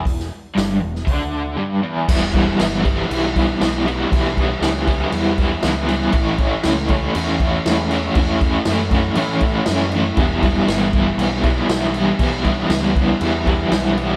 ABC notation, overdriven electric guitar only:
X:1
M:4/4
L:1/8
Q:1/4=119
K:Em
V:1 name="Overdriven electric guitar"
E,, z G,, E,, D,2 G,, E,, | [K:Edor] [E,G,B,E] [E,G,B,E] [E,G,B,E] [E,G,B,E] [E,G,B,E] [E,G,B,E] [E,G,B,E] [E,G,B,E] | [E,G,B,E] [E,G,B,E] [E,G,B,E] [E,G,B,E] [E,G,B,E] [E,G,B,E] [E,G,B,E] [E,G,B,E] | [A,,E,A,CE] [A,,E,A,CE] [A,,E,A,CE] [A,,E,A,CE] [A,,E,A,CE] [A,,E,A,CE] [A,,E,A,CE] [A,,E,A,CE] |
[A,,E,A,CE] [A,,E,A,CE] [A,,E,A,CE] [A,,E,A,CE] [A,,E,A,CE] [A,,E,A,CE] [A,,E,A,CE] [A,,E,A,CE] | [E,G,B,E] [E,G,B,E] [E,G,B,E] [E,G,B,E] [E,G,B,E] [E,G,B,E] [E,G,B,E] [E,G,B,E] | [E,G,B,E] [E,G,B,E] [E,G,B,E] [E,G,B,E] [E,G,B,E] [E,G,B,E] [E,G,B,E] [E,G,B,E] |]